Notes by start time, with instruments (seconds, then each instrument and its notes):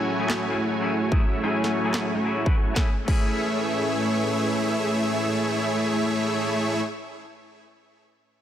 Already playing: clean electric guitar F#3 A3 C#4 E4 G#4, analog synth pad F#3 A3 C#4 E4 G#4, supersaw synth A3 E4 F#4 C#5 G#5
0.19 clean electric guitar F#3 A3 C#4 E4 G#4
0.30 snare, clap
0.49 clean electric guitar F#3 A3 C#4 E4 G#4
0.81 clean electric guitar F#3 A3 C#4 E4 G#4
1.11 clean electric guitar F#3 A3 C#4 E4 G#4, supersaw synth A3 E4 E5, kick
1.42 clean electric guitar F#3 A3 C#4 E4 G#4, supersaw synth A3 E4 F#4 C#5 G#5
1.64 snare
1.84 clean electric guitar F#3 A3 C#4 E4 G#4
1.94 snare, clap
2.14 supersaw synth A3 E4 F#4 C#5 G#5
2.25 clean electric guitar F#3 A3 C#4 E4 G#4
2.45 clean electric guitar F#3 A3 C#4 E4 B4, kick
2.73 analog synth pad A2 A3 C#4 G#4 B4, clean electric guitar A3 B3 C#4, supersaw synth A3 E4 G#4 C#5 E5, kick, snare
2.78 clean electric guitar E4 G#4
3.05 clean electric guitar A3 B3 C#4, supersaw synth A3 E4 G#4 C#5 E5, kick, crash
3.09 clean electric guitar E4 G#4